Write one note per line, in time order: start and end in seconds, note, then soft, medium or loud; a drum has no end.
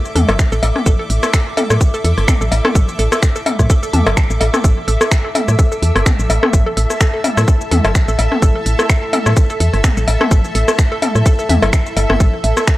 0.00 12.78 A4 medium
0.00 12.78 E5 medium
0.00 5.45 D6 medium
0.05 cabasa soft
0.15 0.25 E2 medium
0.15 0.19 A4 loud
0.15 open hi-hat medium
0.15 high tom medium
0.29 0.36 G1 medium
0.29 0.34 A4 medium
0.29 cross-stick medium
0.29 open hi-hat soft
0.29 cowbell medium
0.39 finger snap medium
0.39 kick loud
0.39 cabasa medium
0.52 0.59 A1 medium
0.52 0.55 A4 loud
0.52 cabasa soft
0.63 0.72 A1 medium
0.63 0.69 A4 medium
0.63 open hi-hat medium
0.63 cowbell medium
0.76 cross-stick soft
0.76 high tom medium
0.86 0.95 A1 loud
0.86 0.90 A4 loud
0.86 kick loud
0.86 cabasa medium
0.99 1.05 A4 medium
1.10 1.19 A1 medium
1.10 open hi-hat medium
1.23 1.26 A4 loud
1.23 cross-stick medium
1.23 cabasa soft
1.34 1.40 A4 medium
1.34 finger snap medium
1.34 kick loud
1.34 cabasa medium
1.57 1.61 A4 loud
1.57 open hi-hat medium
1.57 high tom medium
1.57 cowbell medium
1.70 1.78 A2 medium
1.70 1.75 A4 medium
1.70 cross-stick medium
1.70 cabasa soft
1.81 kick loud
1.81 cabasa medium
1.94 1.97 A4 loud
1.94 cabasa soft
2.04 2.13 E2 medium
2.04 2.11 A4 medium
2.04 open hi-hat medium
2.18 2.25 G1 medium
2.18 cross-stick soft
2.18 open hi-hat soft
2.28 2.32 A4 loud
2.28 finger snap medium
2.28 kick loud
2.28 high tom soft
2.28 cabasa medium
2.41 2.48 A1 medium
2.41 2.46 A4 medium
2.41 cabasa soft
2.52 2.61 A1 medium
2.52 open hi-hat medium
2.52 cowbell medium
2.65 2.68 A4 loud
2.65 cross-stick medium
2.65 high tom medium
2.75 2.84 A1 loud
2.75 2.82 A4 medium
2.75 kick loud
2.75 cabasa medium
2.89 cabasa soft
2.99 3.08 A1 medium
2.99 3.03 A4 loud
2.99 open hi-hat medium
3.12 3.17 A4 medium
3.12 cross-stick medium
3.12 cabasa soft
3.23 finger snap medium
3.23 kick loud
3.23 cabasa medium
3.36 3.39 A4 loud
3.36 cabasa soft
3.46 3.53 A4 medium
3.46 open hi-hat medium
3.46 high tom medium
3.46 cowbell medium
3.59 3.67 A2 medium
3.59 kick medium
3.59 cross-stick soft
3.59 cabasa soft
3.70 3.74 A4 loud
3.70 kick loud
3.70 cabasa medium
3.83 3.88 A4 medium
3.83 cabasa soft
3.93 4.02 E2 medium
3.93 4.03 A5 medium
3.93 open hi-hat medium
3.93 high tom medium
4.06 4.14 G1 medium
4.06 4.12 A4 medium
4.06 cross-stick medium
4.06 open hi-hat soft
4.06 cowbell loud
4.17 4.23 A5 medium
4.17 finger snap medium
4.17 kick loud
4.17 cabasa medium
4.30 4.37 A1 medium
4.30 cabasa soft
4.41 4.50 A1 medium
4.41 4.44 A4 loud
4.41 open hi-hat medium
4.41 cowbell medium
4.54 4.59 A4 medium
4.54 cross-stick medium
4.54 high tom medium
4.54 cabasa soft
4.64 4.73 A1 loud
4.64 4.71 A4 medium
4.64 kick loud
4.64 cabasa medium
4.88 4.97 A1 medium
4.88 4.92 A4 loud
4.88 open hi-hat medium
5.01 5.06 A4 medium
5.01 cross-stick medium
5.01 cabasa soft
5.12 finger snap loud
5.12 kick loud
5.12 cabasa medium
5.25 5.28 A4 loud
5.35 5.42 A4 medium
5.35 open hi-hat medium
5.35 high tom medium
5.35 cowbell loud
5.42 12.78 A5 medium
5.48 5.56 A2 medium
5.48 cross-stick soft
5.48 cabasa soft
5.59 5.63 A4 loud
5.59 kick loud
5.59 cabasa medium
5.72 5.77 A4 medium
5.72 cabasa soft
5.82 5.91 E2 medium
5.82 open hi-hat medium
5.95 6.03 G1 medium
5.95 5.99 A4 loud
5.95 cross-stick medium
5.95 open hi-hat soft
6.06 6.12 A4 medium
6.06 finger snap loud
6.06 kick loud
6.06 high tom medium
6.06 cabasa medium
6.19 6.26 A1 medium
6.19 cabasa soft
6.30 6.39 A1 medium
6.30 6.33 A4 loud
6.30 open hi-hat loud
6.30 cowbell loud
6.43 6.48 A4 medium
6.43 cross-stick medium
6.43 high tom medium
6.53 6.62 A1 loud
6.53 kick loud
6.53 cabasa medium
6.66 6.69 A4 loud
6.77 6.86 A1 medium
6.77 6.83 A4 medium
6.77 open hi-hat loud
6.90 cross-stick soft
6.90 cabasa soft
7.00 7.04 A4 loud
7.00 finger snap loud
7.00 kick loud
7.00 cabasa medium
7.14 7.19 A4 medium
7.24 open hi-hat loud
7.24 high tom medium
7.24 cowbell loud
7.37 7.44 A2 medium
7.37 7.40 A4 loud
7.37 cross-stick medium
7.37 cabasa soft
7.48 7.54 A4 medium
7.48 kick loud
7.48 cabasa medium
7.61 cabasa soft
7.71 7.80 E2 medium
7.71 7.75 A4 loud
7.71 open hi-hat medium
7.71 high tom medium
7.84 7.92 G1 medium
7.84 7.90 A4 medium
7.84 cross-stick medium
7.84 open hi-hat soft
7.84 cowbell loud
7.95 finger snap loud
7.95 kick loud
7.95 cabasa medium
8.08 8.15 A1 medium
8.08 8.11 A4 loud
8.08 cabasa soft
8.19 8.28 A1 medium
8.19 8.25 A4 medium
8.19 open hi-hat loud
8.19 cowbell loud
8.32 cross-stick soft
8.32 high tom medium
8.42 8.51 A1 loud
8.42 8.46 A4 loud
8.42 kick loud
8.42 cabasa medium
8.55 8.61 A4 medium
8.66 8.75 A1 medium
8.66 open hi-hat loud
8.79 8.82 A4 loud
8.79 cross-stick medium
8.79 cabasa soft
8.89 8.96 A4 medium
8.89 finger snap loud
8.89 kick loud
8.89 cabasa medium
9.13 9.17 A4 loud
9.13 open hi-hat loud
9.13 high tom medium
9.13 cowbell medium
9.26 9.33 A2 loud
9.26 9.31 A4 medium
9.26 cross-stick medium
9.26 cabasa soft
9.37 kick loud
9.37 cabasa medium
9.50 9.53 A4 loud
9.50 cabasa soft
9.60 9.69 E2 medium
9.60 9.67 A4 medium
9.60 open hi-hat loud
9.73 9.81 G1 medium
9.73 cross-stick soft
9.73 open hi-hat soft
9.84 9.88 A4 loud
9.84 finger snap medium
9.84 kick loud
9.84 high tom medium
9.84 cabasa medium
9.97 10.04 A1 medium
9.97 10.02 A4 medium
9.97 cabasa soft
10.08 10.17 A1 medium
10.08 open hi-hat loud
10.08 cowbell medium
10.21 10.24 A4 loud
10.21 cross-stick medium
10.21 high tom medium
10.31 10.40 A1 loud
10.31 10.38 A4 medium
10.31 kick loud
10.31 cabasa medium
10.44 cabasa soft
10.55 10.64 A1 medium
10.55 10.59 A4 loud
10.55 open hi-hat loud
10.68 10.73 A4 medium
10.68 cross-stick medium
10.68 cabasa soft
10.78 finger snap medium
10.78 kick loud
10.78 cabasa medium
10.92 10.95 A4 loud
11.02 11.09 A4 medium
11.02 open hi-hat medium
11.02 high tom medium
11.02 cowbell medium
11.15 11.22 A2 loud
11.15 cross-stick soft
11.15 cabasa soft
11.26 11.30 A4 loud
11.26 kick loud
11.26 cabasa medium
11.39 11.44 A4 medium
11.39 cabasa soft
11.49 11.58 E2 medium
11.49 11.56 E5 loud
11.49 open hi-hat medium
11.49 high tom medium
11.62 11.70 G1 medium
11.62 11.68 A4 medium
11.62 cross-stick medium
11.62 open hi-hat soft
11.62 cowbell medium
11.73 11.79 A4 medium
11.73 finger snap medium
11.73 kick loud
11.73 cabasa medium
11.86 cabasa soft
11.97 12.06 G1 medium
11.97 12.03 A4 medium
11.97 open hi-hat loud
11.97 cowbell medium
12.10 12.17 G1 medium
12.10 12.15 A5 medium
12.10 cross-stick medium
12.10 high tom medium
12.20 12.29 A1 loud
12.20 12.27 A4 medium
12.20 kick loud
12.20 cabasa medium
12.44 12.53 A1 medium
12.44 12.53 E5 medium
12.44 open hi-hat medium
12.57 12.62 A4 medium
12.57 cross-stick medium
12.57 cabasa soft
12.67 finger snap medium
12.67 kick loud
12.67 cabasa medium